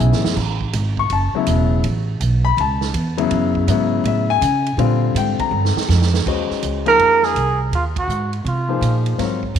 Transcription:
Already playing: grand piano C#3 F#3 B3 E4 G#5
0.00 upright bass B1, hi-hat pedal
0.12 upright bass A1, snare
0.24 upright bass F#1, snare
0.36 upright bass A1, kick, snare, crash
0.61 kick
0.73 upright bass G#1, hi-hat pedal, ride
0.97 grand piano C#6, kick
1.10 upright bass F#1, grand piano A5, ride
1.34 grand piano C#3 F#3 B3 E4, muted upright bass stroke
1.47 upright bass E1, hi-hat pedal, ride
1.84 upright bass A1, ride
2.20 upright bass B1, hi-hat pedal, ride
2.45 grand piano B5
2.57 upright bass C#2, grand piano A5, ride
2.81 snare
2.94 upright bass E2, hi-hat pedal, ride
3.17 grand piano C#3 F#3 B3 E4, ride
3.31 upright bass F#2, ride
3.55 kick
3.67 upright bass G#2, grand piano C#3 F#3 B3 E4, hi-hat pedal, ride
4.04 upright bass A2, grand piano E5, ride
4.30 grand piano G#5
4.41 upright bass C#3, hi-hat pedal, ride
4.66 ride
4.77 upright bass A#2, grand piano D3 G3 C4 F4, ride
5.14 upright bass G#2, grand piano G5, hi-hat pedal, ride
5.39 grand piano A#5, muted upright bass stroke, kick, ride
5.51 upright bass G2
5.65 snare
5.76 muted upright bass stroke, snare
5.88 upright bass F2, snare, hi-hat pedal
6.02 snare
6.14 snare
6.26 upright bass D#2, grand piano G#3 C#4 F#4 C5 D#5, kick, crash
6.50 muted upright bass stroke, snare
6.63 upright bass C#2, hi-hat pedal, ride
6.86 grand piano F3 A#3 D#4 G#4 A#4, trumpet A#4, ride
6.99 upright bass F2, ride
7.23 trumpet G#4, snare
7.35 upright bass C2, hi-hat pedal, ride
7.71 upright bass D#2, trumpet F4, ride
7.96 trumpet F#4, kick, ride
8.08 upright bass G#2, hi-hat pedal
8.33 ride
8.45 upright bass C3, trumpet F4, ride
8.68 grand piano F3 A#3 D#4 G#4 C5
8.81 upright bass A#2, hi-hat pedal, ride
9.06 ride
9.18 upright bass G#2, grand piano F#3 C4 F4 A#4 C#5, snare, ride
9.43 kick
9.54 upright bass F2, hi-hat pedal, ride

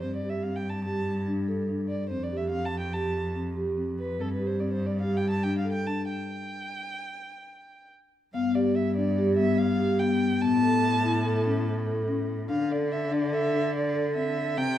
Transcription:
0.02 cello G2, marimba C4, violin C5
0.16 violin D5
0.24 marimba G4
0.29 violin E5
0.43 marimba C4, violin F5
0.56 violin G5
0.69 violin A5
0.85 marimba G4, violin A5
1.27 marimba D4
1.48 marimba A4
1.70 marimba D4
1.89 violin D5
2.09 cello F2, marimba C4, violin C5
2.23 violin D5
2.32 marimba G4
2.37 violin E5
2.50 marimba C4, violin F5
2.65 violin A5
2.80 violin G5
2.93 marimba G4, violin A5
3.36 marimba C4
3.57 marimba G4
3.78 marimba C4
3.99 violin B4
4.18 cello G2, marimba C4, violin A4
4.33 violin B4
4.39 marimba G4
4.47 violin C5
4.60 marimba C4, violin D5
4.73 violin C5
4.86 violin D5
5.01 marimba G4, violin F5
5.17 violin G5
5.30 violin A5
5.43 marimba D4, violin G5
5.58 violin F5
5.64 marimba A4
5.72 violin G5
5.86 marimba D4, violin A5
6.08 violin G5
8.34 cello G2, marimba B3, violin F5
8.55 marimba G4, violin D5
8.75 violin E5
8.96 marimba D4, violin D5
9.18 marimba G4
9.37 marimba B3, violin E5
9.58 violin F5
9.79 marimba G4
9.99 marimba B3, violin G5
10.41 cello A2, marimba B3, violin A5
10.63 marimba A4
11.05 marimba E4
11.25 marimba A4
11.46 marimba C#4
11.87 marimba A4
12.08 marimba C#4
12.49 cello D3, marimba D4, violin F5
12.70 marimba A4, violin D5
12.92 violin E5
13.11 marimba D4, violin D5
13.32 marimba A4, violin E5
13.54 marimba D4
13.75 violin D5
13.95 marimba A4
14.16 marimba C4, violin E5
14.57 cello C3, marimba C4, violin G5

